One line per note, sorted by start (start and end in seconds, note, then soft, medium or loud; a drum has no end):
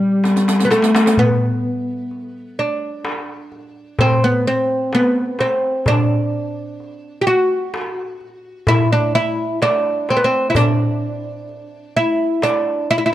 0.00 0.67 G3 medium
0.24 riq soft
0.24 darbuka tek medium
0.36 riq medium
0.36 darbuka ka medium
0.48 riq medium
0.48 darbuka tek medium
0.60 riq medium
0.60 darbuka ka medium
0.65 0.71 B3 medium
0.71 1.19 A3 medium
0.71 riq medium
0.71 darbuka tek medium
0.82 riq medium
0.82 darbuka ka medium
0.95 riq medium
0.95 darbuka tek medium
1.06 riq loud
1.06 darbuka ka medium
1.17 2.63 B3 medium
1.17 darbuka dum medium
2.11 darbuka ka soft
2.59 4.00 D4 medium
3.05 darbuka tek medium
3.52 darbuka ka soft
3.99 4.24 C4 medium
3.99 darbuka dum loud
4.24 4.47 B3 medium
4.46 4.94 C4 medium
4.46 darbuka ka soft
4.93 5.40 B3 medium
4.93 darbuka tek medium
5.16 darbuka ka soft
5.39 5.88 C4 medium
5.39 darbuka tek medium
5.86 7.21 D4 medium
5.86 darbuka dum medium
6.80 darbuka ka soft
7.21 7.26 G4 medium
7.27 8.68 F#4 medium
7.74 darbuka tek medium
8.21 darbuka ka soft
8.67 8.92 E4 loud
8.67 darbuka dum loud
8.93 9.15 D4 medium
9.14 9.62 E4 loud
9.14 darbuka ka soft
9.62 10.10 D4 medium
9.62 darbuka tek medium
9.85 darbuka ka soft
10.09 10.17 C4 medium
10.09 darbuka tek medium
10.17 10.23 B3 medium
10.24 10.49 C4 medium
10.50 10.56 E4 medium
10.55 11.96 D4 medium
10.55 riq medium
10.55 darbuka dum medium
11.49 darbuka ka soft
11.97 12.43 E4 medium
12.42 12.90 D4 medium
12.42 riq soft
12.42 darbuka tek medium
12.90 12.97 E4 loud
12.90 riq soft
12.90 darbuka ka soft
12.98 13.05 E4 medium
13.06 13.12 E4 medium